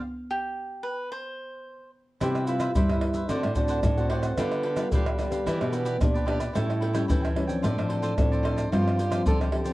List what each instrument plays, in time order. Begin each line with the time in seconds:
0.31 cavaquinho G4
0.83 cavaquinho B4
1.12 cavaquinho C5
2.21 nylon-string guitar C3 G3 B3 E4, cavaquinho E4 B4 C5 E5, trombone G4, pandeiro, tamborim, maracas, surdo
2.35 pandeiro, tamborim, maracas
2.47 nylon-string guitar G3 B3 E4, cavaquinho E4 B4 C5 E5, trombone F4, pandeiro, maracas
2.60 cavaquinho E4 B4 C5 E5, pandeiro, tamborim, maracas
2.75 nylon-string guitar G2 G3, cavaquinho E4 B4 C5 E5, trombone E4, pandeiro, maracas, surdo
2.89 nylon-string guitar G3 B3 E4, cavaquinho B4 C5 E5, pandeiro, tamborim, maracas
3.01 pandeiro, tamborim
3.14 cavaquinho B4 C5 E5, pandeiro, maracas
3.29 nylon-string guitar D3 A3 C4 F#4, cavaquinho D4 C5 D5 F#5, trombone D4, pandeiro, tamborim, maracas, surdo
3.44 nylon-string guitar A2, pandeiro, tamborim, maracas
3.55 nylon-string guitar A3 C4 F#4, cavaquinho D4 C5 D5 F#5, trombone D4, pandeiro, maracas, surdo
3.68 cavaquinho D4 C5 D5 F#5, pandeiro, maracas
3.83 nylon-string guitar A2, pandeiro, tamborim, maracas, surdo
3.97 nylon-string guitar A3 C4 F#4, cavaquinho C5 D5 F#5, pandeiro, maracas
4.10 trombone C4, cavaquinho D4 C5 D5 F#5, pandeiro, tamborim
4.23 cavaquinho C5 D5 F#5, pandeiro, tamborim, maracas
4.38 nylon-string guitar D3 G3 B3 F4, trombone B3, cavaquinho D4 G4 B4 F5, pandeiro, tamborim, maracas, surdo
4.52 pandeiro, tamborim, maracas
4.63 cavaquinho D4 G4 B4 F5, pandeiro
4.77 nylon-string guitar G3 B3 F4, cavaquinho D4 G4 B4 F5, pandeiro, tamborim, maracas
4.92 nylon-string guitar D3, trombone G3, cavaquinho D4 G4 B4 F5, pandeiro, maracas, surdo
5.06 cavaquinho G4 B4 F5, pandeiro, tamborim, maracas
5.18 nylon-string guitar G3 B3 F4, pandeiro, tamborim, maracas
5.30 nylon-string guitar B3 D4 G4, cavaquinho G4 B4 F5, pandeiro, maracas
5.46 nylon-string guitar E3, cavaquinho E4 G4 B4 D5, pandeiro, tamborim, maracas, surdo
5.60 nylon-string guitar B2 B3 D4 G4, pandeiro, tamborim, maracas
5.72 trombone B3, cavaquinho E4 G4 B4 D5, pandeiro, maracas
5.85 cavaquinho E4 G4 B4 D5, pandeiro, maracas
6.01 nylon-string guitar A#2 B3 D4 G4, trombone D4, pandeiro, tamborim, maracas, surdo
6.14 cavaquinho G4 B4 D5, pandeiro, maracas
6.25 nylon-string guitar B3 D4 G4, trombone D4, cavaquinho E4 G4 B4 D5, pandeiro, tamborim
6.39 cavaquinho G4 B4 D5, pandeiro, tamborim, maracas
6.53 nylon-string guitar A2 G3 C#4 E4, cavaquinho E4 A4 C#5 G5, trombone E4, pandeiro, tamborim, maracas, surdo
6.70 pandeiro, tamborim, maracas
6.81 cavaquinho E4 A4 C#5 G5, pandeiro
6.93 nylon-string guitar G3 C#4 E4, cavaquinho E4 A4 C#5 G5, pandeiro, tamborim, maracas
7.08 nylon-string guitar E3, cavaquinho E4 A4 C#5 G5, pandeiro, maracas, surdo
7.22 cavaquinho A4 C#5 G5, pandeiro, tamborim, maracas
7.35 nylon-string guitar G3 C#4 E4, trombone C#4, pandeiro, tamborim
7.47 nylon-string guitar F3 C4 D4, cavaquinho A4 C#5 G5, pandeiro, maracas
7.62 nylon-string guitar A2, trombone D4, cavaquinho F4 A4 C5 D5, pandeiro, tamborim, maracas, surdo
7.78 nylon-string guitar A2 F3 C4 D4, pandeiro, tamborim, maracas
7.88 cavaquinho F4 A4 C5 D5, pandeiro
8.02 cavaquinho F4 A4 C5 D5, pandeiro, maracas
8.18 nylon-string guitar A2 F3 C4 D4, pandeiro, tamborim, maracas, surdo
8.31 cavaquinho A4 C5 D5, pandeiro, maracas
8.43 cavaquinho F4 A4 C5 D5, pandeiro, tamborim
8.56 cavaquinho A4 C5 D5, pandeiro, tamborim, maracas
8.72 nylon-string guitar G2 F3 C4 D4, cavaquinho F4 G4 C5 D5, trombone F4, pandeiro, tamborim, maracas, surdo
8.88 pandeiro, tamborim, maracas
8.98 cavaquinho F4 G4 C5 D5, pandeiro, maracas
9.11 nylon-string guitar F3 C4 D4, cavaquinho F4 G4 C5 D5, pandeiro, tamborim, maracas
9.26 nylon-string guitar D3, cavaquinho F4 G4 C5 D5, trombone A4, pandeiro, maracas, surdo
9.41 cavaquinho G4 C5 D5, pandeiro, tamborim, maracas
9.52 nylon-string guitar F3 C4 D4, trombone G4, pandeiro, tamborim
9.64 nylon-string guitar F3 C4 D4, cavaquinho G4 C5 D5, pandeiro, maracas